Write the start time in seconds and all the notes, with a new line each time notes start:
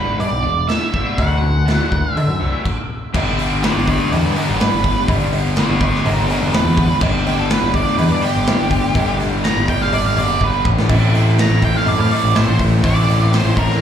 Already playing: G2 D3 G3 B3 D4 B4
0.19 G2 D3 G3 D4 D5, open hi-hat, cowbell
0.32 B1
0.43 E1 G2 D3 G3 D4
0.67 G2 D3 G3 D4 E5, snare, open hi-hat, cowbell
0.94 G2 D3 G3 B3 D4, kick
1.18 D2 D3 F#3 A3 D4 F#4 F#5, kick, open hi-hat, cowbell
1.42 D3 F#3 D4
1.66 D2 D3 F#3 A3 D4 F#4, snare, open hi-hat, cowbell
1.91 D2 D3 F#3 D4, kick
2.14 D3 F#3 D4 E5, open hi-hat, cowbell
2.28 F#2
2.40 C2 D3 F#3 A3 D4 F#4
2.65 kick, crash
3.13 G1 G2 D3 G3 B3 D4 G4 B4 D5, kick, crash, cowbell
3.39 open hi-hat, cowbell
3.63 B4 D5, snare, open hi-hat
3.76 G1
3.87 G2 D3 G3 B3 D4 G4 B4 D5, kick, open hi-hat, cowbell
4.12 E2 G4 A#4, open hi-hat, cowbell
4.25 G2
4.35 G2 D3 G3 G4 A#4, open hi-hat, cowbell
4.49 G1
4.60 G2 D3 G3 B4, snare, open hi-hat, cowbell
4.73 G1
4.84 kick, open hi-hat
5.07 G1 G2 D3 G3 B3 D4 G4, kick, open hi-hat, cowbell
5.33 open hi-hat, cowbell
5.56 B4 D5, snare, open hi-hat
5.70 G1
5.80 G2 D3 G3 B3 D4 G4 B4, kick, open hi-hat, cowbell
5.84 D5
5.95 snare
6.05 G1 G4 A#4, open hi-hat, cowbell
6.17 G1
6.28 G2 D3 G3 G4 A#4, open hi-hat, cowbell
6.41 E1
6.52 G2 D3 G3 B4, snare, open hi-hat, cowbell
6.65 E2
6.77 kick, open hi-hat
7.00 G1 G2 D3 G3 B3 D4 G4 B4, kick, crash, cowbell
7.26 G4, snare, open hi-hat, cowbell
7.39 A4
7.50 B4, snare, open hi-hat
7.62 G1
7.74 G2 D3 G3 B3 D4 G4 D5, kick, open hi-hat, cowbell
7.87 snare
7.98 E2 B4, open hi-hat, cowbell
8.11 G2 D5
8.22 G2 D3 G3 G4, open hi-hat, cowbell
8.36 G1
8.46 G2 D3 G3, snare, open hi-hat, cowbell
8.60 G1
8.71 kick, open hi-hat
8.95 G1 G2 D3 G3 B3 D4 G4, kick, open hi-hat, cowbell
9.19 snare, open hi-hat, cowbell
9.44 A#5, snare, open hi-hat
9.56 G1
9.68 G2 D3 G3 B3 D4 G4 G5, kick, open hi-hat, cowbell
9.82 F5, snare
9.92 G1 D5, open hi-hat, cowbell
10.05 G1 F5
10.16 F#1 G2 D3 G3 D5, open hi-hat, cowbell
10.40 G1 G2 D3 G3 B4, kick, cowbell
10.65 A1, kick
10.79 snare
10.88 A1 A2 E3 A3 C4 E4 A4 C5, kick, open hi-hat, crash, cowbell
11.14 snare, open hi-hat, cowbell
11.38 A#5, snare, open hi-hat
11.49 A1
11.62 A2 E3 A3 C4 E4 A4 G5, kick, open hi-hat, cowbell
11.76 F5, snare
11.86 F#2 D5, open hi-hat, cowbell
11.98 A2 F5
12.09 A2 E3 A3 D5, open hi-hat, cowbell
12.24 A1
12.34 A2 E3 A3 C5, snare, open hi-hat, cowbell
12.47 A1
12.59 kick, open hi-hat
12.83 A1 A2 E3 A3 C4 E4 A4 D5, kick, open hi-hat, cowbell
13.09 snare, open hi-hat, cowbell
13.33 C5, snare, open hi-hat
13.45 A1
13.55 A2 E3 A3 C4 E4 A4 A#4, kick, open hi-hat, cowbell
13.70 snare